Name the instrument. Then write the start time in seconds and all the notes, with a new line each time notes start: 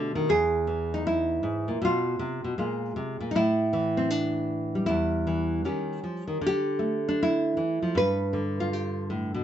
nylon-string guitar
Already playing: B2 D3 A3 D4 G4
0.15 D#3
0.29 E2 G#4
0.67 E3
0.94 D#4
1.07 E4
1.43 G#2
1.68 A#2
1.82 B2 F4
2.19 C3
2.44 B2
2.58 A#2 G#3 F4
2.96 C3
3.20 A#2
3.31 D#4
3.35 A2 E4
3.73 E3
3.97 C4
4.10 D4
4.75 G3
4.86 E2 E4
5.27 E3
5.65 D#3 C#4 G4
6.04 F3
6.27 D#3
6.41 D3
6.46 G4
6.79 A3
7.09 D4
7.23 E4
7.57 E3
7.82 F3
7.95 G2 B4
8.33 D3
8.60 F4
8.73 G4
9.10 A2
9.34 B2